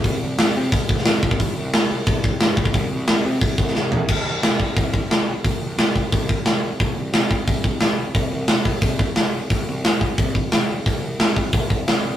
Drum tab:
CC |----------------|----------------|----------------|x---------------|
HH |o---o---o---o---|o---o---o---o---|o---o---o-------|----o---o---o---|
SD |----o------oo---|----o-------o---|----o------oo---|----o-------o---|
FT |----------------|----------------|--------------o-|----------------|
BD |o-------o-o---oo|o-------o-o---oo|o-------o-o-----|o-----o-o-o-----|

CC |----------------|----------------|----------------|----------------|
HH |o---o---o---o---|o---o---o---o---|o---o---o---o---|o---o---o---o---|
SD |----o-------o---|----o-------o---|----o-------o---|----o-------o---|
FT |----------------|----------------|----------------|----------------|
BD |o-----o-o-o-----|o-----o-o-o-----|o-----o-o-o-----|o-----o-o-o-----|

CC |----------------|
HH |o---o---o---o---|
SD |----o-------o---|
FT |----------------|
BD |o-----o-o-o-----|